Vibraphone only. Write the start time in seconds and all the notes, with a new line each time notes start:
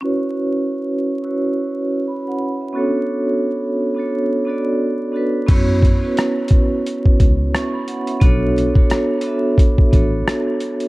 0.01 C#4 E4 F#4 B4
0.05 C#5
1.22 C#4 E4 F#4 B4
1.27 C#5
2.08 B5
2.28 F#5
2.61 E5
2.73 B3 C#4 F#4 A4
2.77 D4 C#5
3.95 B3 D4 F#4 A4
4.00 C#5
4.45 B3 D4 F#4 A4
4.49 D5
5.12 B3 D4 F#4 A4
5.17 B4
5.47 B3 C#4 E4 F#4
5.51 C#5
6.01 B3 C#4 E4 F#4
6.05 B4
7.54 E5 C#6
7.73 B5
7.88 F#5
8.08 E5
8.20 B3 D4 F#4 A4
8.25 C#5
8.74 B3 D4 F#4 A4
8.79 C#5
9.23 B3 D4 F#4 A4
9.27 E5
9.91 B3 D4 F#4 A4
9.96 C#5